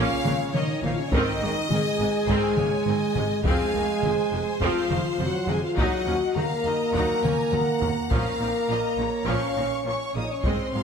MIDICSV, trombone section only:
0, 0, Header, 1, 2, 480
1, 0, Start_track
1, 0, Key_signature, -5, "minor"
1, 0, Tempo, 582524
1, 916, Time_signature, 4, 2, 24, 8
1, 8924, End_track
2, 0, Start_track
2, 0, Title_t, "Trombone section"
2, 0, Program_c, 0, 61
2, 0, Note_on_c, 0, 49, 79
2, 433, Note_off_c, 0, 49, 0
2, 446, Note_on_c, 0, 51, 79
2, 664, Note_on_c, 0, 53, 83
2, 681, Note_off_c, 0, 51, 0
2, 790, Note_off_c, 0, 53, 0
2, 795, Note_on_c, 0, 49, 73
2, 910, Note_on_c, 0, 51, 92
2, 916, Note_off_c, 0, 49, 0
2, 1384, Note_off_c, 0, 51, 0
2, 1393, Note_on_c, 0, 56, 89
2, 2806, Note_off_c, 0, 56, 0
2, 2836, Note_on_c, 0, 56, 96
2, 3777, Note_off_c, 0, 56, 0
2, 3796, Note_on_c, 0, 53, 73
2, 4267, Note_off_c, 0, 53, 0
2, 4280, Note_on_c, 0, 54, 74
2, 4518, Note_off_c, 0, 54, 0
2, 4528, Note_on_c, 0, 56, 79
2, 4641, Note_on_c, 0, 53, 71
2, 4642, Note_off_c, 0, 56, 0
2, 4757, Note_off_c, 0, 53, 0
2, 4784, Note_on_c, 0, 54, 87
2, 5109, Note_off_c, 0, 54, 0
2, 5248, Note_on_c, 0, 58, 84
2, 6654, Note_off_c, 0, 58, 0
2, 6707, Note_on_c, 0, 58, 87
2, 7633, Note_off_c, 0, 58, 0
2, 7666, Note_on_c, 0, 61, 71
2, 8126, Note_off_c, 0, 61, 0
2, 8136, Note_on_c, 0, 61, 66
2, 8361, Note_off_c, 0, 61, 0
2, 8376, Note_on_c, 0, 63, 67
2, 8486, Note_off_c, 0, 63, 0
2, 8499, Note_on_c, 0, 61, 61
2, 8608, Note_off_c, 0, 61, 0
2, 8616, Note_on_c, 0, 60, 82
2, 8924, Note_off_c, 0, 60, 0
2, 8924, End_track
0, 0, End_of_file